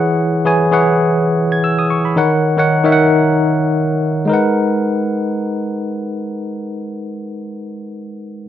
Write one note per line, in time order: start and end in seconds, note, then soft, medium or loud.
0.00 0.30 E3 medium
0.00 0.30 E4 medium
0.00 0.31 G#4 medium
0.00 0.31 C#5 medium
0.00 0.31 F#5 loud
0.45 0.66 E3 medium
0.45 0.66 E4 medium
0.45 0.66 G#4 medium
0.45 0.66 C#5 medium
0.45 0.67 G#5 medium
0.71 1.56 E3 medium
0.71 1.56 E4 medium
0.71 1.56 G#4 medium
0.71 1.57 C#5 medium
0.71 1.57 F#5 medium
1.52 1.63 G#6 medium
1.64 1.77 E6 medium
1.79 1.90 D#6 medium
1.90 2.04 C#6 medium
2.05 2.30 B5 medium
2.16 2.48 D#3 medium
2.16 2.49 D#4 medium
2.16 2.49 A#4 medium
2.16 2.49 C#5 medium
2.16 2.49 F#5 medium
2.57 2.78 D#3 medium
2.57 2.78 D#4 medium
2.57 2.79 A#4 medium
2.57 2.79 C#5 medium
2.57 2.79 F#5 medium
2.84 3.68 D#3 medium
2.84 3.68 D#4 medium
2.84 3.69 A#4 medium
2.84 3.69 C#5 medium
2.84 2.91 E5 medium
2.92 3.72 F#5 loud
4.25 8.44 G#3 medium
4.25 8.46 D#4 medium
4.29 8.48 A#4 medium
4.29 8.49 B4 medium
4.34 8.49 F#5 medium